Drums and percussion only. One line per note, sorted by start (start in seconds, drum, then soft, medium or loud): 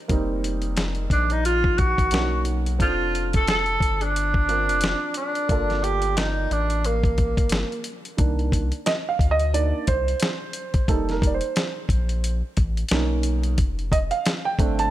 0.09 kick loud
0.09 closed hi-hat medium
0.44 closed hi-hat medium
0.62 closed hi-hat soft
0.77 snare loud
0.77 closed hi-hat medium
0.95 closed hi-hat soft
1.10 kick medium
1.10 closed hi-hat medium
1.30 closed hi-hat soft
1.45 closed hi-hat medium
1.64 kick medium
1.78 kick medium
1.78 closed hi-hat medium
1.98 kick medium
1.98 closed hi-hat medium
2.11 snare loud
2.11 closed hi-hat medium
2.45 closed hi-hat medium
2.66 closed hi-hat soft
2.80 kick loud
2.80 closed hi-hat medium
3.15 closed hi-hat medium
3.33 kick medium
3.33 closed hi-hat medium
3.48 snare loud
3.48 closed hi-hat medium
3.66 closed hi-hat soft
3.80 kick medium
3.80 closed hi-hat medium
4.01 closed hi-hat soft
4.16 closed hi-hat medium
4.34 kick medium
4.49 closed hi-hat medium
4.69 closed hi-hat medium
4.81 snare loud
4.81 closed hi-hat loud
5.14 closed hi-hat medium
5.35 closed hi-hat medium
5.49 kick loud
5.49 closed hi-hat medium
5.70 snare soft
5.70 closed hi-hat soft
5.84 closed hi-hat medium
6.02 closed hi-hat medium
6.17 snare loud
6.17 closed hi-hat medium
6.51 closed hi-hat medium
6.70 closed hi-hat soft
6.84 closed hi-hat medium
7.04 kick medium
7.04 closed hi-hat soft
7.18 kick medium
7.18 closed hi-hat medium
7.37 kick medium
7.37 closed hi-hat medium
7.49 snare loud
7.49 closed hi-hat loud
7.72 closed hi-hat soft
7.84 closed hi-hat medium
8.05 closed hi-hat soft
8.18 kick loud
8.18 closed hi-hat medium
8.39 closed hi-hat soft
8.52 kick medium
8.52 closed hi-hat medium
8.72 closed hi-hat medium
8.86 snare loud
8.86 closed hi-hat medium
9.19 kick medium
9.19 closed hi-hat medium
9.40 closed hi-hat soft
9.54 closed hi-hat medium
9.87 kick loud
9.87 closed hi-hat medium
10.08 closed hi-hat soft
10.20 snare loud
10.20 closed hi-hat medium
10.53 closed hi-hat medium
10.74 kick medium
10.74 closed hi-hat medium
10.88 kick loud
10.88 closed hi-hat medium
11.09 snare soft
11.09 closed hi-hat soft
11.22 kick medium
11.22 closed hi-hat medium
11.41 closed hi-hat medium
11.56 snare loud
11.56 closed hi-hat medium
11.89 kick medium
11.89 closed hi-hat medium
12.09 closed hi-hat medium
12.24 closed hi-hat medium
12.57 kick medium
12.57 closed hi-hat medium
12.77 closed hi-hat medium
12.89 snare loud
12.89 closed hi-hat medium
13.23 closed hi-hat medium
13.44 closed hi-hat medium
13.58 kick loud
13.58 closed hi-hat medium
13.79 closed hi-hat soft
13.92 kick medium
13.92 closed hi-hat medium
14.11 closed hi-hat medium
14.26 snare loud
14.26 closed hi-hat medium
14.59 kick medium
14.59 closed hi-hat medium
14.79 closed hi-hat medium